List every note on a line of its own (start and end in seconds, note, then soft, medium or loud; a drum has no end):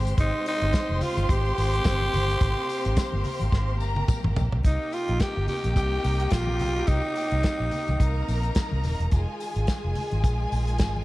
0.00 4.60 C3 medium
0.00 2.09 G#3 medium
0.00 4.61 G4 medium
0.00 3.76 C5 medium
0.00 3.76 C6 loud
0.06 0.15 G1 medium
0.06 closed hi-hat medium
0.17 0.30 G#1 medium
0.17 0.45 D#4 loud
0.17 kick loud
0.17 closed hi-hat medium
0.17 muted conga soft
0.17 low conga medium
0.46 1.04 D#4 loud
0.46 open hi-hat medium
0.46 tambourine soft
0.61 0.71 G1 loud
0.61 closed hi-hat soft
0.73 kick loud
0.73 snare loud
0.73 closed hi-hat medium
0.73 tambourine medium
0.89 0.99 F1 medium
0.89 muted conga soft
0.89 high conga medium
1.01 1.32 F4 medium
1.01 open hi-hat medium
1.01 low conga medium
1.17 1.26 G1 loud
1.17 closed hi-hat medium
1.17 high conga medium
1.29 1.50 G#1 loud
1.29 4.09 G4 loud
1.29 kick loud
1.29 closed hi-hat medium
1.29 tambourine medium
1.29 muted conga soft
1.46 muted conga soft
1.58 1.79 G#1 medium
1.58 open hi-hat medium
1.58 tambourine medium
1.73 closed hi-hat soft
1.84 2.06 G1 loud
1.84 kick loud
1.84 snare loud
1.84 closed hi-hat medium
1.84 tambourine loud
1.84 muted conga soft
1.84 high conga medium
2.01 high conga medium
2.13 2.34 G1 medium
2.13 4.62 A#3 medium
2.13 open hi-hat medium
2.13 tambourine medium
2.13 high conga medium
2.13 low conga medium
2.30 closed hi-hat soft
2.41 2.53 G#1 medium
2.41 kick loud
2.41 closed hi-hat medium
2.41 muted conga soft
2.41 low conga medium
2.69 open hi-hat medium
2.69 tambourine soft
2.85 2.94 G#1 medium
2.85 closed hi-hat soft
2.97 kick loud
2.97 snare loud
2.97 closed hi-hat medium
2.97 tambourine medium
3.12 3.22 G1 medium
3.12 muted conga soft
3.12 high conga medium
3.24 open hi-hat medium
3.24 tambourine soft
3.24 low conga medium
3.40 3.50 G#1 medium
3.40 closed hi-hat medium
3.40 high conga medium
3.52 3.81 G#1 medium
3.52 kick loud
3.52 snare medium
3.52 tambourine medium
3.52 muted conga soft
3.68 muted conga soft
3.80 4.02 G1 medium
3.80 4.35 A#4 medium
3.80 4.35 A#5 medium
3.80 tambourine medium
3.96 high tom medium
4.08 kick loud
4.08 mid tom medium
4.08 tambourine loud
4.08 muted conga soft
4.08 high conga medium
4.23 4.33 G#1 medium
4.23 mid tom medium
4.23 high conga medium
4.36 4.48 A#1 medium
4.36 floor tom loud
4.36 tambourine medium
4.36 high conga medium
4.36 low conga medium
4.52 4.61 B1 medium
4.52 floor tom medium
4.63 4.76 C2 medium
4.63 9.08 C3 medium
4.63 9.09 A#3 medium
4.63 9.08 D#4 medium
4.63 4.95 D#4 medium
4.63 7.96 G4 medium
4.63 7.96 G5 medium
4.63 kick loud
4.63 closed hi-hat medium
4.63 tambourine soft
4.63 muted conga soft
4.63 low conga medium
4.92 5.22 F4 loud
4.92 open hi-hat medium
4.92 tambourine soft
5.08 5.18 A#1 medium
5.08 closed hi-hat soft
5.20 5.48 G4 loud
5.20 kick loud
5.20 snare loud
5.20 closed hi-hat medium
5.20 tambourine medium
5.20 muted conga soft
5.37 5.46 G1 medium
5.47 5.74 G4 medium
5.47 open hi-hat medium
5.47 tambourine soft
5.47 low conga medium
5.63 5.76 A#1 medium
5.63 closed hi-hat soft
5.63 high conga medium
5.75 5.97 C2 medium
5.75 6.33 G4 loud
5.75 kick loud
5.75 closed hi-hat medium
5.75 tambourine soft
5.75 muted conga soft
5.91 muted conga soft
6.04 6.25 C2 medium
6.04 open hi-hat medium
6.04 tambourine medium
6.20 closed hi-hat soft
6.31 6.61 A#1 loud
6.31 6.89 F4 loud
6.31 kick loud
6.31 snare loud
6.31 closed hi-hat medium
6.31 tambourine loud
6.31 muted conga soft
6.31 high conga medium
6.47 high conga medium
6.59 6.81 B1 medium
6.59 open hi-hat medium
6.59 tambourine soft
6.59 high conga medium
6.59 low conga medium
6.76 closed hi-hat soft
6.87 7.00 C2 medium
6.87 8.84 D#4 medium
6.87 kick loud
6.87 closed hi-hat medium
6.87 tambourine soft
6.87 muted conga soft
6.87 low conga medium
7.05 muted conga soft
7.16 open hi-hat medium
7.16 tambourine soft
7.31 7.41 C2 medium
7.31 closed hi-hat soft
7.43 kick loud
7.43 snare loud
7.43 closed hi-hat medium
7.43 tambourine medium
7.60 7.69 A#1 medium
7.71 open hi-hat medium
7.71 tambourine soft
7.71 low conga medium
7.88 7.97 C2 medium
7.88 closed hi-hat soft
7.88 high conga medium
8.00 8.21 C2 medium
8.00 9.10 A#4 medium
8.00 9.10 A#5 medium
8.00 kick loud
8.00 closed hi-hat medium
8.00 tambourine soft
8.16 muted conga soft
8.28 8.49 A#1 medium
8.28 open hi-hat medium
8.28 tambourine medium
8.43 closed hi-hat soft
8.55 kick loud
8.55 snare loud
8.55 closed hi-hat medium
8.55 tambourine loud
8.55 high conga medium
8.71 8.81 C2 medium
8.71 high conga medium
8.83 8.96 D#1 medium
8.83 open hi-hat medium
8.83 tambourine medium
8.83 high conga medium
8.83 low conga medium
9.00 9.09 E1 medium
9.00 closed hi-hat soft
9.11 9.24 F1 medium
9.11 11.04 D#3 medium
9.11 11.04 G#3 medium
9.11 11.04 F4 medium
9.11 11.04 G#4 medium
9.11 11.04 G#5 medium
9.11 kick loud
9.11 closed hi-hat medium
9.11 tambourine soft
9.11 low conga medium
9.40 open hi-hat medium
9.40 tambourine soft
9.56 9.65 G#1 medium
9.56 closed hi-hat soft
9.67 kick loud
9.67 snare loud
9.67 closed hi-hat medium
9.67 tambourine medium
9.85 9.93 F1 medium
9.95 open hi-hat medium
9.95 low conga medium
10.11 10.24 G#1 medium
10.11 closed hi-hat soft
10.11 high conga medium
10.24 10.45 A#1 medium
10.24 kick loud
10.24 closed hi-hat medium
10.24 tambourine soft
10.24 muted conga soft
10.40 muted conga soft
10.52 10.80 A#1 medium
10.52 open hi-hat medium
10.52 tambourine soft
10.67 closed hi-hat soft
10.78 11.01 G#1 medium
10.78 kick loud
10.78 snare loud
10.78 closed hi-hat medium
10.78 tambourine loud
10.78 muted conga soft
10.78 high conga medium
10.96 muted conga soft
10.96 high conga medium